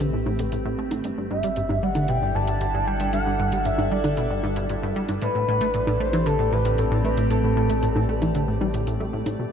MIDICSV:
0, 0, Header, 1, 6, 480
1, 0, Start_track
1, 0, Key_signature, 0, "minor"
1, 0, Tempo, 521739
1, 960, Time_signature, 4, 2, 24, 8
1, 8759, End_track
2, 0, Start_track
2, 0, Title_t, "Analog synth lead"
2, 0, Program_c, 0, 81
2, 1201, Note_on_c, 0, 76, 93
2, 1683, Note_on_c, 0, 78, 96
2, 1696, Note_off_c, 0, 76, 0
2, 1920, Note_on_c, 0, 79, 110
2, 1934, Note_off_c, 0, 78, 0
2, 2160, Note_on_c, 0, 81, 110
2, 2174, Note_off_c, 0, 79, 0
2, 2639, Note_on_c, 0, 79, 95
2, 2652, Note_off_c, 0, 81, 0
2, 2874, Note_off_c, 0, 79, 0
2, 2879, Note_on_c, 0, 78, 104
2, 3362, Note_on_c, 0, 76, 89
2, 3376, Note_off_c, 0, 78, 0
2, 3599, Note_on_c, 0, 74, 88
2, 3613, Note_off_c, 0, 76, 0
2, 4560, Note_off_c, 0, 74, 0
2, 4802, Note_on_c, 0, 71, 114
2, 5525, Note_on_c, 0, 72, 103
2, 5538, Note_off_c, 0, 71, 0
2, 5764, Note_on_c, 0, 69, 105
2, 5778, Note_off_c, 0, 72, 0
2, 6002, Note_on_c, 0, 71, 97
2, 6016, Note_off_c, 0, 69, 0
2, 6244, Note_on_c, 0, 69, 92
2, 6258, Note_off_c, 0, 71, 0
2, 6482, Note_on_c, 0, 71, 96
2, 6496, Note_off_c, 0, 69, 0
2, 6717, Note_off_c, 0, 71, 0
2, 6722, Note_on_c, 0, 69, 100
2, 8125, Note_off_c, 0, 69, 0
2, 8759, End_track
3, 0, Start_track
3, 0, Title_t, "Ambient pad"
3, 0, Program_c, 1, 92
3, 0, Note_on_c, 1, 45, 83
3, 0, Note_on_c, 1, 57, 77
3, 0, Note_on_c, 1, 60, 82
3, 0, Note_on_c, 1, 67, 67
3, 0, Note_on_c, 1, 71, 74
3, 960, Note_off_c, 1, 71, 0
3, 961, Note_off_c, 1, 45, 0
3, 961, Note_off_c, 1, 57, 0
3, 961, Note_on_c, 1, 55, 64
3, 963, Note_off_c, 1, 60, 0
3, 1217, Note_on_c, 1, 74, 65
3, 1227, Note_on_c, 1, 62, 64
3, 1231, Note_on_c, 1, 64, 71
3, 1702, Note_on_c, 1, 69, 74
3, 1846, Note_off_c, 1, 67, 0
3, 4796, Note_on_c, 1, 45, 65
3, 4801, Note_off_c, 1, 55, 0
3, 4973, Note_on_c, 1, 57, 85
3, 5128, Note_on_c, 1, 67, 73
3, 5178, Note_on_c, 1, 60, 79
3, 5694, Note_off_c, 1, 64, 0
3, 6334, Note_off_c, 1, 69, 0
3, 6335, Note_off_c, 1, 62, 0
3, 8638, Note_off_c, 1, 45, 0
3, 8638, Note_off_c, 1, 60, 0
3, 8640, Note_off_c, 1, 67, 0
3, 8640, Note_on_c, 1, 47, 74
3, 8759, Note_off_c, 1, 47, 0
3, 8759, Note_off_c, 1, 57, 0
3, 8759, Note_off_c, 1, 74, 0
3, 8759, End_track
4, 0, Start_track
4, 0, Title_t, "Analog synth bass"
4, 0, Program_c, 2, 38
4, 0, Note_on_c, 2, 50, 78
4, 89, Note_off_c, 2, 50, 0
4, 122, Note_on_c, 2, 45, 70
4, 210, Note_off_c, 2, 45, 0
4, 241, Note_on_c, 2, 45, 94
4, 355, Note_off_c, 2, 45, 0
4, 361, Note_on_c, 2, 45, 75
4, 449, Note_off_c, 2, 45, 0
4, 481, Note_on_c, 2, 45, 80
4, 534, Note_off_c, 2, 45, 0
4, 601, Note_on_c, 2, 45, 99
4, 689, Note_off_c, 2, 45, 0
4, 722, Note_on_c, 2, 57, 73
4, 774, Note_off_c, 2, 57, 0
4, 843, Note_on_c, 2, 45, 68
4, 930, Note_off_c, 2, 45, 0
4, 962, Note_on_c, 2, 43, 78
4, 1014, Note_off_c, 2, 43, 0
4, 1084, Note_on_c, 2, 43, 68
4, 1171, Note_off_c, 2, 43, 0
4, 1202, Note_on_c, 2, 43, 96
4, 1315, Note_off_c, 2, 43, 0
4, 1324, Note_on_c, 2, 55, 73
4, 1375, Note_off_c, 2, 55, 0
4, 1443, Note_on_c, 2, 43, 78
4, 1495, Note_off_c, 2, 43, 0
4, 1561, Note_on_c, 2, 43, 100
4, 1649, Note_off_c, 2, 43, 0
4, 1682, Note_on_c, 2, 55, 73
4, 1734, Note_off_c, 2, 55, 0
4, 1802, Note_on_c, 2, 50, 70
4, 1890, Note_off_c, 2, 50, 0
4, 1922, Note_on_c, 2, 47, 81
4, 2010, Note_off_c, 2, 47, 0
4, 2042, Note_on_c, 2, 43, 71
4, 2130, Note_off_c, 2, 43, 0
4, 2163, Note_on_c, 2, 43, 102
4, 2276, Note_off_c, 2, 43, 0
4, 2282, Note_on_c, 2, 43, 73
4, 2370, Note_off_c, 2, 43, 0
4, 2399, Note_on_c, 2, 43, 77
4, 2453, Note_off_c, 2, 43, 0
4, 2521, Note_on_c, 2, 43, 93
4, 2609, Note_off_c, 2, 43, 0
4, 2643, Note_on_c, 2, 55, 74
4, 2695, Note_off_c, 2, 55, 0
4, 2762, Note_on_c, 2, 43, 72
4, 2850, Note_off_c, 2, 43, 0
4, 2882, Note_on_c, 2, 43, 84
4, 2934, Note_off_c, 2, 43, 0
4, 3002, Note_on_c, 2, 43, 72
4, 3090, Note_off_c, 2, 43, 0
4, 3122, Note_on_c, 2, 43, 102
4, 3235, Note_off_c, 2, 43, 0
4, 3242, Note_on_c, 2, 55, 73
4, 3294, Note_off_c, 2, 55, 0
4, 3362, Note_on_c, 2, 43, 80
4, 3414, Note_off_c, 2, 43, 0
4, 3481, Note_on_c, 2, 43, 101
4, 3569, Note_off_c, 2, 43, 0
4, 3601, Note_on_c, 2, 55, 72
4, 3654, Note_off_c, 2, 55, 0
4, 3720, Note_on_c, 2, 50, 71
4, 3809, Note_off_c, 2, 50, 0
4, 3840, Note_on_c, 2, 47, 84
4, 3928, Note_off_c, 2, 47, 0
4, 3960, Note_on_c, 2, 43, 72
4, 4049, Note_off_c, 2, 43, 0
4, 4081, Note_on_c, 2, 43, 96
4, 4195, Note_off_c, 2, 43, 0
4, 4201, Note_on_c, 2, 43, 75
4, 4289, Note_off_c, 2, 43, 0
4, 4321, Note_on_c, 2, 43, 81
4, 4374, Note_off_c, 2, 43, 0
4, 4441, Note_on_c, 2, 43, 97
4, 4529, Note_off_c, 2, 43, 0
4, 4562, Note_on_c, 2, 55, 78
4, 4614, Note_off_c, 2, 55, 0
4, 4682, Note_on_c, 2, 43, 69
4, 4770, Note_off_c, 2, 43, 0
4, 4801, Note_on_c, 2, 45, 84
4, 4854, Note_off_c, 2, 45, 0
4, 4922, Note_on_c, 2, 45, 70
4, 5010, Note_off_c, 2, 45, 0
4, 5042, Note_on_c, 2, 45, 101
4, 5155, Note_off_c, 2, 45, 0
4, 5163, Note_on_c, 2, 57, 74
4, 5215, Note_off_c, 2, 57, 0
4, 5283, Note_on_c, 2, 45, 81
4, 5335, Note_off_c, 2, 45, 0
4, 5401, Note_on_c, 2, 45, 102
4, 5489, Note_off_c, 2, 45, 0
4, 5521, Note_on_c, 2, 57, 71
4, 5574, Note_off_c, 2, 57, 0
4, 5642, Note_on_c, 2, 52, 78
4, 5729, Note_off_c, 2, 52, 0
4, 5759, Note_on_c, 2, 50, 83
4, 5848, Note_off_c, 2, 50, 0
4, 5878, Note_on_c, 2, 45, 74
4, 5968, Note_off_c, 2, 45, 0
4, 5998, Note_on_c, 2, 45, 94
4, 6113, Note_off_c, 2, 45, 0
4, 6120, Note_on_c, 2, 45, 78
4, 6209, Note_off_c, 2, 45, 0
4, 6239, Note_on_c, 2, 45, 80
4, 6293, Note_off_c, 2, 45, 0
4, 6359, Note_on_c, 2, 45, 99
4, 6448, Note_off_c, 2, 45, 0
4, 6480, Note_on_c, 2, 57, 78
4, 6534, Note_off_c, 2, 57, 0
4, 6600, Note_on_c, 2, 45, 71
4, 6688, Note_off_c, 2, 45, 0
4, 6722, Note_on_c, 2, 45, 82
4, 6774, Note_off_c, 2, 45, 0
4, 6842, Note_on_c, 2, 45, 74
4, 6930, Note_off_c, 2, 45, 0
4, 6960, Note_on_c, 2, 45, 104
4, 7074, Note_off_c, 2, 45, 0
4, 7080, Note_on_c, 2, 57, 76
4, 7133, Note_off_c, 2, 57, 0
4, 7202, Note_on_c, 2, 45, 80
4, 7254, Note_off_c, 2, 45, 0
4, 7321, Note_on_c, 2, 45, 105
4, 7409, Note_off_c, 2, 45, 0
4, 7442, Note_on_c, 2, 57, 71
4, 7494, Note_off_c, 2, 57, 0
4, 7561, Note_on_c, 2, 52, 76
4, 7649, Note_off_c, 2, 52, 0
4, 7680, Note_on_c, 2, 50, 81
4, 7769, Note_off_c, 2, 50, 0
4, 7801, Note_on_c, 2, 45, 72
4, 7889, Note_off_c, 2, 45, 0
4, 7921, Note_on_c, 2, 55, 94
4, 7974, Note_off_c, 2, 55, 0
4, 8040, Note_on_c, 2, 45, 75
4, 8129, Note_off_c, 2, 45, 0
4, 8163, Note_on_c, 2, 45, 85
4, 8250, Note_off_c, 2, 45, 0
4, 8281, Note_on_c, 2, 57, 71
4, 8369, Note_off_c, 2, 57, 0
4, 8401, Note_on_c, 2, 45, 78
4, 8489, Note_off_c, 2, 45, 0
4, 8521, Note_on_c, 2, 45, 70
4, 8609, Note_off_c, 2, 45, 0
4, 8639, Note_on_c, 2, 47, 79
4, 8693, Note_off_c, 2, 47, 0
4, 8759, End_track
5, 0, Start_track
5, 0, Title_t, "Sub bass"
5, 0, Program_c, 3, 38
5, 0, Note_on_c, 3, 33, 86
5, 937, Note_off_c, 3, 33, 0
5, 959, Note_on_c, 3, 31, 83
5, 4776, Note_off_c, 3, 31, 0
5, 4800, Note_on_c, 3, 33, 86
5, 8616, Note_off_c, 3, 33, 0
5, 8759, End_track
6, 0, Start_track
6, 0, Title_t, "Drums"
6, 0, Note_on_c, 9, 42, 51
6, 91, Note_off_c, 9, 42, 0
6, 238, Note_on_c, 9, 61, 48
6, 330, Note_off_c, 9, 61, 0
6, 359, Note_on_c, 9, 42, 61
6, 451, Note_off_c, 9, 42, 0
6, 479, Note_on_c, 9, 42, 46
6, 571, Note_off_c, 9, 42, 0
6, 838, Note_on_c, 9, 42, 60
6, 838, Note_on_c, 9, 61, 51
6, 930, Note_off_c, 9, 42, 0
6, 930, Note_off_c, 9, 61, 0
6, 957, Note_on_c, 9, 42, 49
6, 1049, Note_off_c, 9, 42, 0
6, 1317, Note_on_c, 9, 42, 62
6, 1409, Note_off_c, 9, 42, 0
6, 1437, Note_on_c, 9, 42, 45
6, 1529, Note_off_c, 9, 42, 0
6, 1557, Note_on_c, 9, 61, 60
6, 1649, Note_off_c, 9, 61, 0
6, 1795, Note_on_c, 9, 42, 58
6, 1795, Note_on_c, 9, 61, 63
6, 1887, Note_off_c, 9, 42, 0
6, 1887, Note_off_c, 9, 61, 0
6, 1915, Note_on_c, 9, 42, 49
6, 2007, Note_off_c, 9, 42, 0
6, 2277, Note_on_c, 9, 42, 59
6, 2369, Note_off_c, 9, 42, 0
6, 2399, Note_on_c, 9, 42, 46
6, 2491, Note_off_c, 9, 42, 0
6, 2758, Note_on_c, 9, 42, 60
6, 2850, Note_off_c, 9, 42, 0
6, 2879, Note_on_c, 9, 42, 45
6, 2971, Note_off_c, 9, 42, 0
6, 3239, Note_on_c, 9, 42, 56
6, 3331, Note_off_c, 9, 42, 0
6, 3360, Note_on_c, 9, 42, 47
6, 3452, Note_off_c, 9, 42, 0
6, 3480, Note_on_c, 9, 61, 63
6, 3572, Note_off_c, 9, 61, 0
6, 3717, Note_on_c, 9, 42, 53
6, 3717, Note_on_c, 9, 61, 64
6, 3809, Note_off_c, 9, 42, 0
6, 3809, Note_off_c, 9, 61, 0
6, 3838, Note_on_c, 9, 42, 45
6, 3930, Note_off_c, 9, 42, 0
6, 4077, Note_on_c, 9, 61, 47
6, 4169, Note_off_c, 9, 61, 0
6, 4197, Note_on_c, 9, 42, 58
6, 4289, Note_off_c, 9, 42, 0
6, 4319, Note_on_c, 9, 42, 46
6, 4411, Note_off_c, 9, 42, 0
6, 4679, Note_on_c, 9, 42, 58
6, 4679, Note_on_c, 9, 61, 46
6, 4771, Note_off_c, 9, 42, 0
6, 4771, Note_off_c, 9, 61, 0
6, 4799, Note_on_c, 9, 42, 48
6, 4891, Note_off_c, 9, 42, 0
6, 5160, Note_on_c, 9, 42, 60
6, 5252, Note_off_c, 9, 42, 0
6, 5280, Note_on_c, 9, 42, 45
6, 5372, Note_off_c, 9, 42, 0
6, 5401, Note_on_c, 9, 61, 64
6, 5493, Note_off_c, 9, 61, 0
6, 5642, Note_on_c, 9, 42, 58
6, 5642, Note_on_c, 9, 61, 69
6, 5734, Note_off_c, 9, 42, 0
6, 5734, Note_off_c, 9, 61, 0
6, 5760, Note_on_c, 9, 42, 46
6, 5852, Note_off_c, 9, 42, 0
6, 6119, Note_on_c, 9, 42, 55
6, 6211, Note_off_c, 9, 42, 0
6, 6240, Note_on_c, 9, 42, 46
6, 6332, Note_off_c, 9, 42, 0
6, 6600, Note_on_c, 9, 42, 56
6, 6692, Note_off_c, 9, 42, 0
6, 6720, Note_on_c, 9, 42, 47
6, 6812, Note_off_c, 9, 42, 0
6, 7081, Note_on_c, 9, 42, 58
6, 7173, Note_off_c, 9, 42, 0
6, 7200, Note_on_c, 9, 42, 46
6, 7292, Note_off_c, 9, 42, 0
6, 7320, Note_on_c, 9, 61, 70
6, 7412, Note_off_c, 9, 61, 0
6, 7561, Note_on_c, 9, 42, 56
6, 7561, Note_on_c, 9, 61, 71
6, 7653, Note_off_c, 9, 42, 0
6, 7653, Note_off_c, 9, 61, 0
6, 7679, Note_on_c, 9, 42, 48
6, 7771, Note_off_c, 9, 42, 0
6, 7920, Note_on_c, 9, 61, 51
6, 8012, Note_off_c, 9, 61, 0
6, 8041, Note_on_c, 9, 42, 57
6, 8133, Note_off_c, 9, 42, 0
6, 8161, Note_on_c, 9, 42, 45
6, 8253, Note_off_c, 9, 42, 0
6, 8520, Note_on_c, 9, 42, 58
6, 8520, Note_on_c, 9, 61, 50
6, 8612, Note_off_c, 9, 42, 0
6, 8612, Note_off_c, 9, 61, 0
6, 8759, End_track
0, 0, End_of_file